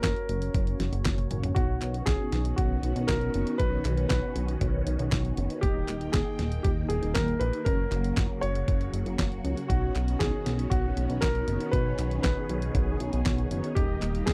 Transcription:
Already playing: analog polysynth A#3 C#4 F#4 C#5
0.02 analog synth bass F#1, grand piano A#4, kick, snare, clap, closed hi-hat
0.16 closed hi-hat
0.29 analog synth bass F#1, closed hi-hat
0.42 closed hi-hat
0.54 analog synth bass F#1, kick, closed hi-hat
0.67 closed hi-hat
0.80 analog synth bass F#1, snare, closed hi-hat
0.93 analog synth bass F#1, closed hi-hat
1.05 analog synth bass F#1, kick, snare, clap, closed hi-hat
1.18 closed hi-hat, high tom
1.31 analog synth bass F#1, analog polysynth A#3 C#4 F#4 C#5, closed hi-hat, mid tom
1.43 closed hi-hat, mid tom
1.55 analog synth bass B1, analog polysynth B2 B3 D#4 F#4 C#5, string machine D#3 B3 C#4 F#4, grand piano F#4, kick, closed hi-hat
1.82 analog synth bass B1, clap, closed hi-hat
1.94 closed hi-hat
2.06 analog synth bass B1, grand piano G#4, kick, snare, clap, closed hi-hat
2.32 analog synth bass B1, snare, closed hi-hat
2.45 closed hi-hat
2.56 analog synth bass B1, grand piano F#4, kick, closed hi-hat
2.83 analog synth bass B1, closed hi-hat
2.96 analog synth bass B1, closed hi-hat
3.07 analog synth bass B1, grand piano A#4, kick, snare, clap, closed hi-hat
3.21 closed hi-hat
3.34 analog synth bass F#1, analog polysynth B2 B3 D#4 F#4 C#5, closed hi-hat
3.47 closed hi-hat
3.58 analog synth bass B1, analog polysynth B2 B3 D#4 F#4 C#5, grand piano B4, kick, closed hi-hat
3.85 analog synth bass B1, clap, closed hi-hat
3.98 closed hi-hat
4.09 analog synth bass B1, grand piano B4, kick, snare, clap, closed hi-hat
4.36 analog synth bass B1, closed hi-hat
4.49 closed hi-hat
4.61 analog synth bass B1, kick, closed hi-hat
4.87 analog synth bass B1, closed hi-hat
4.99 analog synth bass B1, closed hi-hat
5.12 analog synth bass B1, kick, snare, clap, closed hi-hat
5.25 closed hi-hat
5.37 analog synth bass F#1, analog polysynth B3 D#4 F#4 C#5, closed hi-hat
5.50 closed hi-hat
5.61 analog synth bass D#1, analog polysynth D#3 A#3 D#4 D#5 G5, string machine A#3 G5, grand piano G4, kick, closed hi-hat
5.88 analog synth bass D#1, clap, closed hi-hat
6.01 closed hi-hat
6.12 analog synth bass D#1, grand piano G#4, kick, snare, clap, closed hi-hat
6.39 analog synth bass D#1, snare, closed hi-hat
6.52 closed hi-hat
6.63 analog synth bass D#1, grand piano G4, kick, closed hi-hat
6.89 analog synth bass D#1, grand piano G#4, closed hi-hat
7.03 analog synth bass D#1, closed hi-hat
7.14 analog synth bass D#1, grand piano A#4, kick, snare, clap, closed hi-hat
7.28 closed hi-hat
7.39 analog synth bass A#1, analog polysynth A#3 D#4 G4 D#5, grand piano B4, closed hi-hat
7.53 closed hi-hat
7.65 analog synth bass F#1, string machine C#3 F#3 F#4, analog polysynth A#3 C#4 F#4 C#5, grand piano A#4, kick, closed hi-hat
7.92 analog synth bass F#1, clap, closed hi-hat
8.04 closed hi-hat
8.17 analog synth bass F#1, kick, snare, clap, closed hi-hat
8.41 analog synth bass F#1, grand piano C#5, closed hi-hat
8.55 closed hi-hat
8.68 analog synth bass F#1, kick, closed hi-hat
8.81 closed hi-hat
8.93 analog synth bass F#1, closed hi-hat
9.06 analog synth bass F#1, closed hi-hat
9.19 analog synth bass F#1, kick, snare, clap, closed hi-hat
9.32 closed hi-hat
9.44 analog synth bass C#2, analog polysynth A#3 C#4 F#4 C#5, closed hi-hat
9.57 closed hi-hat
9.68 analog synth bass B1, analog polysynth B2 B3 D#4 F#4 C#5, string machine D#3 B3 C#4, grand piano F#4, kick, closed hi-hat
9.95 analog synth bass B1, clap, closed hi-hat
10.08 closed hi-hat
10.19 analog synth bass B1, grand piano G#4, kick, snare, clap, closed hi-hat
10.46 analog synth bass B1, snare, closed hi-hat
10.59 closed hi-hat
10.70 analog synth bass B1, grand piano F#4, kick, closed hi-hat
10.97 analog synth bass B1, closed hi-hat
11.10 analog synth bass B1, closed hi-hat
11.21 analog synth bass B1, grand piano A#4, kick, snare, clap, closed hi-hat
11.35 closed hi-hat
11.48 analog synth bass F#1, analog polysynth B2 B3 D#4 F#4 C#5, closed hi-hat
11.61 closed hi-hat
11.71 analog synth bass B1, analog polysynth B2 B3 D#4 F#4 C#5, string machine G#4, grand piano B4, kick, closed hi-hat
11.99 analog synth bass B1, clap, closed hi-hat
12.11 closed hi-hat
12.22 analog synth bass B1, grand piano B4, kick, snare, clap, closed hi-hat
12.49 analog synth bass B1, closed hi-hat
12.62 closed hi-hat
12.75 analog synth bass B1, kick, closed hi-hat
13.00 analog synth bass B1, closed hi-hat
13.13 analog synth bass B1, closed hi-hat
13.26 analog synth bass B1, kick, snare, clap, closed hi-hat
13.38 closed hi-hat
13.51 analog synth bass F#1, analog polysynth B3 D#4 F#4 C#5, closed hi-hat
13.64 closed hi-hat
13.75 analog synth bass D#1, analog polysynth D#3 A#3 D#4 G4 D#5, string machine D#3 G3 A#3 G4, grand piano G4, kick, closed hi-hat
14.02 analog synth bass D#1, clap, closed hi-hat
14.15 closed hi-hat
14.26 analog synth bass D#1, grand piano G#4, kick, snare, clap, closed hi-hat

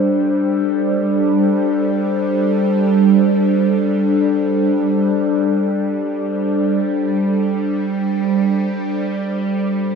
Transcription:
Already playing: ambient pad G3 D4 A4 C5, synth drone G3
9.75 ambient pad A#2
9.82 ambient pad A#3
9.89 ambient pad F4

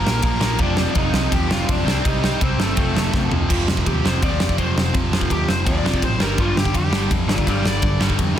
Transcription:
Already playing: overdriven electric guitar A#2 F3 A#3, lead electric guitar A#4 A#5
0.04 picked electric bass A#1, distorted electric guitar A#2 F3 A#3, snare
0.22 picked electric bass A#1, distorted electric guitar A#2 F3 A#3, lead electric guitar A#4 A#5, kick, ride
0.40 picked electric bass A#1, distorted electric guitar A#2 F3 A#3, overdriven electric guitar A#2 F3 A#3, snare
0.58 picked electric bass F1, distorted electric guitar F2 C3 F3, overdriven electric guitar F2 C3, lead electric guitar D4 D5, kick, ride
0.63 overdriven electric guitar F3
0.76 distorted electric guitar F2 C3 F3, snare
0.94 picked electric bass F1, distorted electric guitar F2 C3 F3, lead electric guitar D#4 D#5, kick, ride
1.12 picked electric bass C2, distorted electric guitar F2 C3 F3, snare
1.30 picked electric bass D#2, distorted electric guitar F2 C3 F3, lead electric guitar G4 G5, kick, ride
1.47 picked electric bass F1, distorted electric guitar F2 C3 F3, lead electric guitar F4, snare
1.52 lead electric guitar F5
1.68 picked electric bass F1, distorted electric guitar F2 C3 F3, lead electric guitar D4 D5, kick, ride
1.85 picked electric bass C2, overdriven electric guitar C3 G3, distorted electric guitar C3 G3 C4, snare
1.89 overdriven electric guitar C4
2.04 picked electric bass C2, distorted electric guitar C3 G3 C4, lead electric guitar D#4 D#5, kick, ride
2.22 distorted electric guitar C3 G3 C4, snare
2.40 picked electric bass C2, distorted electric guitar C3 G3 C4, lead electric guitar C4 C5, kick, ride
2.58 picked electric bass G1, distorted electric guitar C3 G3 C4, lead electric guitar A3, snare
2.63 lead electric guitar A4
2.75 picked electric bass F1, overdriven electric guitar F2 C3 F3, distorted electric guitar F2 C3 F3, kick, ride
2.94 picked electric bass F1, distorted electric guitar F2 C3 F3, snare
3.13 picked electric bass F1, distorted electric guitar F2 C3 F3, kick, snare
3.30 picked electric bass F1, distorted electric guitar F2 C3 F3, floor tom
3.48 picked electric bass F1, distorted electric guitar F2 C3 F3, overdriven electric guitar F2 C3 F3, kick, crash
3.68 picked electric bass F1, overdriven electric guitar F2 C3, snare
3.77 kick
3.86 picked electric bass D#2, overdriven electric guitar F2 C3, lead electric guitar G4, kick, ride
4.04 picked electric bass F1, overdriven electric guitar F2 C3 F3, lead electric guitar C5, snare
4.21 picked electric bass D#2, distorted electric guitar F2 C3 F3, overdriven electric guitar F2 C3, lead electric guitar D5, kick, ride
4.40 picked electric bass F1, overdriven electric guitar F2 C3, snare
4.49 kick
4.58 picked electric bass F1, overdriven electric guitar F2 C3 F3, lead electric guitar C5, kick, ride
4.76 picked electric bass F1, overdriven electric guitar F2 C3, snare
4.92 picked electric bass F1, distorted electric guitar F2 C3 F3, overdriven electric guitar F2 C3, kick, ride
5.12 picked electric bass F1, overdriven electric guitar F2 C3 F3, snare
5.21 kick
5.30 picked electric bass D#2, overdriven electric guitar F2 C3, lead electric guitar G4, kick, ride
5.48 picked electric bass F1, overdriven electric guitar F2 C3, lead electric guitar C5, snare
5.64 picked electric bass D#2, distorted electric guitar F2 C3 F3, overdriven electric guitar F2 C3, lead electric guitar D5, kick, ride
5.84 picked electric bass F1, overdriven electric guitar F2 C3 F3, snare
5.94 kick
6.02 picked electric bass A1, overdriven electric guitar F2 C3, lead electric guitar C5, kick, ride
6.18 picked electric bass G1, distorted electric guitar G2 D3 G3, overdriven electric guitar G2 D3, lead electric guitar A#4, snare
6.23 overdriven electric guitar G3
6.38 picked electric bass G1, overdriven electric guitar G2 D3 G3, lead electric guitar F4, kick, ride
6.57 picked electric bass G1, overdriven electric guitar G2 D3, lead electric guitar G4, snare
6.65 kick
6.74 picked electric bass F2, overdriven electric guitar G2 D3, lead electric guitar G4, kick, ride
6.91 picked electric bass G1, overdriven electric guitar G2 D3 G3, distorted electric guitar G2 D3 G3, snare
7.10 picked electric bass F2, overdriven electric guitar G2 D3, kick, ride
7.28 picked electric bass G1, overdriven electric guitar G2 D3, lead electric guitar F4 D5, snare
7.38 kick
7.46 picked electric bass G1, overdriven electric guitar G2 D3 G3, lead electric guitar D5 F5, kick, ride
7.63 picked electric bass G1, distorted electric guitar G2 D3 G3, overdriven electric guitar G2 D3, lead electric guitar D5, snare
7.82 picked electric bass G1, overdriven electric guitar G2 D3, kick, ride
8.00 picked electric bass G1, overdriven electric guitar G2 D3 G3, snare
8.10 kick
8.18 picked electric bass F2, overdriven electric guitar G2 D3, kick, ride
8.36 overdriven electric guitar G2 D3, distorted electric guitar G3

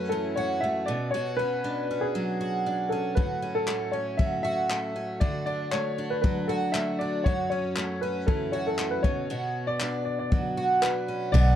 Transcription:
Already playing: twelve-string acoustic guitar F#2 F#3 A3 C#4 F#4, upright piano B4
0.09 twelve-string acoustic guitar E3, upright piano A4
0.36 twelve-string acoustic guitar F#4, upright piano C#5
0.60 twelve-string acoustic guitar A3, upright piano E5
0.86 twelve-string acoustic guitar B2, upright piano D5
1.11 twelve-string acoustic guitar B2 F#4, upright piano C#5
1.37 twelve-string acoustic guitar C#4, upright piano B4
1.64 twelve-string acoustic guitar D4
1.91 twelve-string acoustic guitar C#4
2.01 upright piano G#4
2.15 twelve-string acoustic guitar F#3
2.41 twelve-string acoustic guitar F#4
2.66 twelve-string acoustic guitar D4
2.89 twelve-string acoustic guitar C#4, upright piano A4
3.15 twelve-string acoustic guitar A2 F#4, upright piano B4, kick
3.42 twelve-string acoustic guitar C#4
3.55 upright piano A4
3.68 twelve-string acoustic guitar A3, clap
3.92 twelve-string acoustic guitar C#4, upright piano C#5
4.17 twelve-string acoustic guitar F#3, upright piano E5, kick
4.43 twelve-string acoustic guitar F#4, upright piano E5
4.70 twelve-string acoustic guitar A3, clap
4.96 twelve-string acoustic guitar C#4
5.20 twelve-string acoustic guitar D3 F#4, upright piano D5, kick
5.46 twelve-string acoustic guitar D4, upright piano D5
5.71 twelve-string acoustic guitar A3, upright piano C#5, clap
5.98 twelve-string acoustic guitar D4
6.10 upright piano B4
6.22 twelve-string acoustic guitar F#3, upright piano B4, kick
6.48 twelve-string acoustic guitar F#4, upright piano A4
6.72 twelve-string acoustic guitar A3, upright piano E5, clap
6.99 twelve-string acoustic guitar D4, upright piano D5
7.24 twelve-string acoustic guitar F#2 F#4, upright piano C#5, kick
7.50 twelve-string acoustic guitar C#4, upright piano C#5
7.76 twelve-string acoustic guitar A3, clap
8.01 twelve-string acoustic guitar C#4, upright piano B4
8.27 twelve-string acoustic guitar E3, upright piano A4, kick
8.52 twelve-string acoustic guitar F#4, upright piano C#5
8.67 upright piano A4
8.79 twelve-string acoustic guitar A3, clap
8.91 upright piano B4
9.03 twelve-string acoustic guitar B2, upright piano C#5, kick
9.30 twelve-string acoustic guitar B2 F#4
9.67 upright piano D5
9.80 twelve-string acoustic guitar D4, clap
10.05 upright piano D5
10.19 upright piano D5
10.32 twelve-string acoustic guitar F#3, kick
10.57 twelve-string acoustic guitar F#4
10.82 twelve-string acoustic guitar D4, upright piano B4, clap
11.08 twelve-string acoustic guitar C#4
11.32 fingered electric bass B1, twelve-string acoustic guitar B2 F#4, upright piano D5, kick, crash

